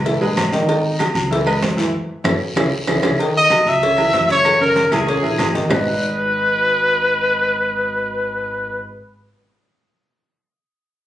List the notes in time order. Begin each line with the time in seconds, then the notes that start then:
Already playing: C#2
0.05 E3 E4 E5, cowbell, high conga, long guiro
0.21 A#1 G#3 G#4 B4, high conga, low agogo
0.36 G#1, cowbell, high conga, low timbale, low agogo, short guiro, claves
0.52 D#3 D#4 D#5, cowbell, high conga, short guiro
0.68 D#3 D#4 D#5, cowbell, high conga, low agogo, long guiro
0.85 high conga
0.99 F#3 F#4 G#4, cowbell, high conga, low timbale, low agogo, short guiro, claves
1.15 C#2, high conga, low agogo, short guiro
1.31 E3 E4 E5, cowbell, high conga, long guiro
1.46 G#3 G#4 B4, high conga, low agogo, claves
1.62 F#2, cowbell, high conga, low timbale, low agogo, short guiro
1.77 E3 E4 E5, cowbell, short guiro
2.24 F#1 C#4 E4 F#4, cowbell, high conga, high timbale, long guiro, claves
2.56 C#2 C#4 E4 G#4, cowbell, high conga, high timbale, long guiro, claves
2.87 C#2 C#4 E4 G#4, cowbell, high conga, high timbale, long guiro, claves
3.03 C#2 C#4 E4 G#4, cowbell, high conga, high timbale, long guiro, claves
3.18 D#3 D#4 D#5, cowbell, high conga, low agogo, long guiro
3.35 D#5, high conga
3.50 F#3 F#4 G#4, cowbell, high conga, low timbale, low agogo, short guiro, claves
3.66 C#2 E5, low agogo, short guiro
3.82 C#3 C#4 C#5, cowbell, high conga, long guiro
3.97 E3 E4 G#4, high conga, low agogo, claves
4.13 F#2, cowbell, high conga, low timbale, low agogo, short guiro
4.29 C#3 C#4 C#5, cowbell, short guiro
4.44 E3 E4 F#4, cowbell, high conga, low agogo, long guiro, claves
4.60 C#3 C#4 A#4 C#5, high conga
4.76 cowbell, high conga, low timbale, low agogo, short guiro
4.91 C#2 E3 E4 G#4, cowbell, high conga, low conga, low agogo, short guiro, claves
5.06 C#3 C#4 C#5, cowbell, high conga, long guiro
5.22 A#1 E3 E4 G#4, high conga, low agogo
5.38 G#1, cowbell, high conga, low timbale, low agogo, short guiro, claves
5.54 D#3 D#4 D#5, cowbell, high conga, short guiro
5.69 G#1 G#3 D#4 F#4 G#4 B4 D#5, low bongo, low conga, low timbale, long guiro, claves